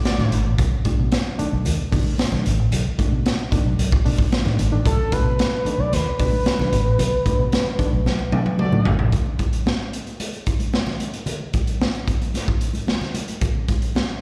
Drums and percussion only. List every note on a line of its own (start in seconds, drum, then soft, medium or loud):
0.05 snare medium
0.05 closed hi-hat medium
0.05 muted conga soft
0.05 high conga medium
0.19 snare soft
0.19 muted conga soft
0.19 low conga medium
0.32 closed hi-hat medium
0.32 high conga medium
0.58 kick loud
0.58 closed hi-hat medium
0.58 muted conga soft
0.58 low conga medium
0.85 kick medium
0.85 closed hi-hat medium
0.85 high conga medium
1.12 snare loud
1.12 closed hi-hat medium
1.12 high conga medium
1.25 muted conga soft
1.39 closed hi-hat medium
1.65 closed hi-hat medium
1.65 muted conga soft
1.65 high conga medium
1.92 kick medium
1.92 open hi-hat medium
2.04 high conga medium
2.18 snare loud
2.18 closed hi-hat medium
2.18 muted conga soft
2.18 high conga medium
2.32 snare soft
2.32 low conga medium
2.45 closed hi-hat medium
2.45 high conga medium
2.72 closed hi-hat loud
2.72 low conga medium
2.85 muted conga soft
2.99 kick medium
2.99 closed hi-hat medium
2.99 high conga medium
3.26 snare loud
3.26 closed hi-hat medium
3.26 muted conga soft
3.26 high conga medium
3.39 muted conga soft
3.52 kick medium
3.52 closed hi-hat medium
3.79 closed hi-hat medium
3.79 muted conga soft
3.79 high conga medium
3.92 kick medium
3.92 muted conga soft
4.06 open hi-hat medium
4.19 kick medium
4.19 high conga medium
4.32 snare loud
4.32 closed hi-hat medium
4.32 muted conga soft
4.32 high conga medium
4.45 snare soft
4.45 muted conga soft
4.45 low conga medium
4.59 closed hi-hat medium
4.59 high conga medium
4.86 kick loud
4.86 closed hi-hat medium
4.86 muted conga soft
4.86 low conga medium
5.12 kick medium
5.12 closed hi-hat medium
5.12 high conga medium
5.39 snare loud
5.39 closed hi-hat medium
5.39 high conga medium
5.53 muted conga soft
5.66 closed hi-hat medium
5.93 snare soft
5.93 closed hi-hat loud
5.93 muted conga soft
5.93 high conga medium
6.06 muted conga soft
6.19 kick loud
6.19 open hi-hat medium
6.33 high conga medium
6.46 snare loud
6.46 closed hi-hat medium
6.46 high conga medium
6.59 snare soft
6.59 low conga medium
6.73 closed hi-hat medium
6.73 high conga medium
6.99 closed hi-hat medium
6.99 muted conga soft
6.99 low conga medium
7.26 kick medium
7.26 closed hi-hat medium
7.26 high conga medium
7.52 snare loud
7.52 closed hi-hat medium
7.52 high conga medium
7.79 kick medium
7.79 closed hi-hat medium
8.06 snare medium
8.06 muted conga soft
8.06 high conga medium
8.19 muted conga soft
8.32 high tom medium
8.46 high tom medium
8.46 high conga medium
8.59 mid tom medium
8.59 muted conga soft
8.59 high conga medium
8.72 muted conga soft
8.72 low conga medium
8.85 floor tom loud
8.85 high conga medium
8.99 floor tom medium
9.12 kick medium
9.12 closed hi-hat medium
9.12 low conga medium
9.26 muted conga soft
9.39 kick medium
9.39 closed hi-hat medium
9.39 high conga medium
9.53 closed hi-hat medium
9.66 snare loud
9.66 muted conga soft
9.66 high conga medium
9.93 closed hi-hat medium
10.07 closed hi-hat soft
10.20 closed hi-hat medium
10.20 muted conga soft
10.20 high conga medium
10.33 closed hi-hat soft
10.33 muted conga soft
10.46 kick medium
10.46 closed hi-hat medium
10.59 closed hi-hat soft
10.59 high conga medium
10.73 snare medium
10.73 high conga medium
10.87 snare soft
10.87 muted conga soft
10.87 low conga medium
11.00 closed hi-hat medium
11.00 high conga medium
11.13 closed hi-hat medium
11.26 closed hi-hat medium
11.26 muted conga soft
11.26 low conga medium
11.40 muted conga soft
11.54 kick medium
11.54 closed hi-hat medium
11.54 high conga medium
11.67 closed hi-hat medium
11.81 snare loud
11.81 high conga medium
11.94 closed hi-hat soft
11.94 muted conga soft
12.08 kick medium
12.08 closed hi-hat medium
12.22 closed hi-hat soft
12.34 snare soft
12.34 closed hi-hat medium
12.34 muted conga soft
12.34 high conga medium
12.47 kick medium
12.47 muted conga soft
12.61 closed hi-hat medium
12.74 closed hi-hat soft
12.74 high conga medium
12.87 snare medium
12.87 muted conga soft
12.87 high conga medium
13.01 snare soft
13.01 muted conga soft
13.01 low conga medium
13.14 closed hi-hat medium
13.14 high conga medium
13.28 closed hi-hat medium
13.41 kick loud
13.41 closed hi-hat medium
13.41 muted conga soft
13.41 low conga medium
13.55 muted conga soft
13.68 kick medium
13.68 closed hi-hat medium
13.68 high conga medium
13.82 closed hi-hat medium
13.95 snare loud
13.95 muted conga soft
13.95 high conga medium